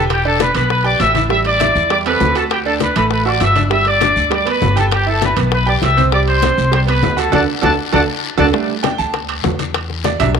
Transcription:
Already playing: E1 G4 G5
0.10 G4 G5, high bongo, high conga, high timbale, long guiro
0.25 D4 A4 D5 A5, high bongo, high conga
0.40 B4 B5, high bongo, high conga, high timbale, low timbale, short guiro
0.55 B1 B3 B4 B5, high conga, high timbale, short guiro
0.70 B4 B5, high bongo, high conga, long guiro
0.84 G4 D5 G5 D6, high bongo, high conga
1.00 A1 E5 E6, high bongo, low bongo, high conga, high timbale, low timbale, short guiro
1.14 E4 E5, high bongo, high conga, high timbale, short guiro
1.30 G3 G4 E5 E6, high bongo, high conga, long guiro
1.45 D5 D6, high bongo, high conga, high timbale
1.60 E4 E5, high bongo, high conga, high timbale, low timbale, short guiro
1.75 E2, high conga, short guiro
1.90 G3 G4 D5 D6, high bongo, high conga, high timbale, long guiro
2.06 C4 A4 B4 B5, high bongo, high conga, high timbale
2.20 D2, high bongo, low bongo, high conga, low timbale, short guiro
2.35 F#4 A4 F#5 A5, high bongo, high timbale, short guiro
2.50 G4 G5, high bongo, high conga, high timbale, long guiro
2.66 D4 A4 D5 A5, high bongo, high conga
2.80 B4 B5, high bongo, high conga, high timbale, low timbale, short guiro
2.96 A1 A3 A4 B4 B5, high timbale, short guiro
3.10 B4 B5, high bongo, high conga, long guiro
3.24 F#4 E5 F#5, high bongo, high conga
3.28 D5 D6
3.40 G1 E5 E6, high bongo, low bongo, high conga, high timbale, low timbale, short guiro
3.55 D4 D5, high bongo, high conga, high timbale, short guiro
3.70 G3 G4 E5 E6, high bongo, high conga, long guiro
3.85 D5 D6, high bongo, high conga, high timbale
4.00 D4 D5, high bongo, high conga, high timbale, low timbale, short guiro
4.16 D2, high conga, short guiro
4.30 G3 G4 D5 D6, high bongo, high conga, high timbale, long guiro
4.45 B3 B4 B5, high bongo, high conga, high timbale
4.62 G1, high bongo, low bongo, high conga, low timbale, short guiro
4.76 G4 A4 G5 A5, high bongo, high conga, high timbale, short guiro
4.91 G4 G5, high bongo, high conga, high timbale, long guiro
5.06 E4 A4 E5 A5, high bongo, high conga
5.21 B4 B5, high bongo, high conga, high timbale, low timbale, short guiro
5.36 B1 B3 B4, high conga, high timbale, short guiro
5.52 B4 B5, high bongo, high conga, long guiro
5.66 G4 D5 G5 D6, high bongo, high conga
5.82 C2 E5 E6, high bongo, low bongo, high conga, high timbale, low timbale, short guiro
5.97 C4 C5, high bongo, high conga, high timbale, short guiro
6.12 G3 G4 D5 D6, high bongo, high conga, long guiro
6.28 C5 C6, high bongo, high conga, high timbale
6.42 C4 C5, high bongo, high conga, high timbale, low timbale, short guiro
6.58 C2, high conga, short guiro
6.71 G3 G4 C5 C6, high bongo, high conga, high timbale, long guiro
6.87 B3 B4 B5, high bongo, high timbale
7.03 D2, high bongo, low bongo, high conga, low timbale, short guiro
7.17 F#4 A4 F#5 A5, high bongo, high timbale, short guiro
7.32 D2 D4 F#4 A4 D5 F#5 A5, low bongo, high conga, high timbale, long guiro
7.62 D2 D4 F#4 A4 D5 F#5 A5, low bongo, high conga, high timbale, long guiro
7.93 D2 D4 F#4 A4 D5 F#5 A5, low bongo, high conga, high timbale, long guiro
8.38 D2 D4 F#4 A4 D5 F#5 A5, low bongo, high conga, high timbale, long guiro
8.52 G3 A3 D4, high bongo, high conga, long guiro
8.69 high conga
8.83 G5, high bongo, high conga, high timbale, low timbale, short guiro
8.98 D2 A5, high conga, short guiro
9.14 high bongo, high conga, high timbale, long guiro
9.29 high conga, high timbale
9.44 E2, high bongo, low bongo, high conga, low timbale, short guiro
9.59 high conga, high timbale, short guiro
9.74 high bongo, high conga, high timbale, long guiro
9.90 high bongo, high conga
10.04 D5, high bongo, high conga, high timbale, low timbale, short guiro
10.20 B1 F#3 G3 D4 E5, high bongo, high conga, low conga, high timbale, short guiro
10.35 high bongo, high conga, long guiro

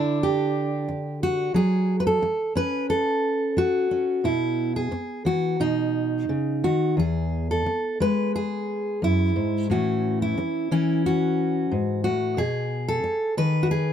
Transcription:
Already playing: D3 D4 E4
0.23 G4
0.88 muted steel-string acoustic guitar stroke
1.23 F#4
1.54 F#3 G#4
2.00 B4
2.07 A4
2.22 muted steel-string acoustic guitar stroke
2.55 C#4 B4
2.90 A4
3.57 F#4, muted steel-string acoustic guitar stroke
3.91 C#4
4.24 B2 E4
4.76 G#4
4.92 muted steel-string acoustic guitar stroke
5.25 E3 F#4
5.60 B2 D#4
6.29 C#3
6.64 D#3 F#4
6.97 E2 G#4
7.51 A4
7.66 muted steel-string acoustic guitar stroke
8.00 G#3 B4
8.36 G#4
9.02 F#2 E4
9.36 G#2
9.70 A2 E3 C#4 F#4
10.22 E4
10.38 muted steel-string acoustic guitar stroke
10.71 E3 C#4
11.06 F#4
11.72 G#2
12.04 A2 F#4
12.37 B2 G#4
12.88 A4
13.04 muted steel-string acoustic guitar stroke
13.37 D#3 B4
13.63 F#4
13.71 G#4

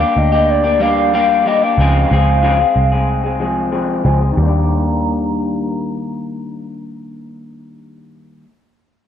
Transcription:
Already playing: F5
0.00 A#3 D4 G4
0.16 D2 D#5
0.32 A#3 D4 G4
0.50 D5
0.64 A#3 D4 G4
0.79 G3 A#3 D4 G4 F5
1.14 G3 A#3 D4 G4 F5
1.46 G3 A#3 D4 G4 D#5
1.62 A#3 D4 G4 F5
1.78 C#2 C#3 F3 G#3 C4 G#4
2.11 C#2 F3 G#3 C4 G#4
2.42 C#3 F3 G#3 C4 G#4
2.59 G#3 C4 G#4
2.76 C2
2.92 G#3 C4 G#4
3.24 G#3 C4 G#4
3.40 F3 G#3 C4 G#4
3.72 F3 G#3 C4 G#4
4.04 C#2 F3 G#3 C4 G#4
4.21 G#3 C4 G#4
4.32 D#3
4.37 D#2 G3 A#5
4.42 A#3 D4
4.49 G4

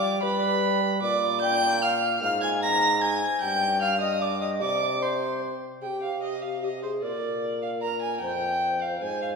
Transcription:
Already playing: G3 D5 D6
0.23 G3 B4 B5
1.02 A#2 D5 D6
1.41 G5 G6
1.82 F5 F6
2.21 G#2 F5 F6
2.41 G#5 G#6
2.63 A#5 A#6
3.01 G#5 G#6
3.41 G2 G5 G6
3.81 F5 F6
4.00 D#5 D#6
4.21 D5 D6
4.40 D#5 D#6
4.61 C3 D5 D6
5.02 C5 C6
5.82 C3 G#4 G5
5.87 G4
6.03 F5
6.22 D#5
6.42 F5
6.62 G4 D#5
6.83 G#4 C5
7.02 A#2 A#4 D5
7.62 F5
7.82 A#4 A#5
8.02 G#5
8.20 F2 C5 G5
8.81 F5
9.01 G#2 C5 G#5
9.22 F5

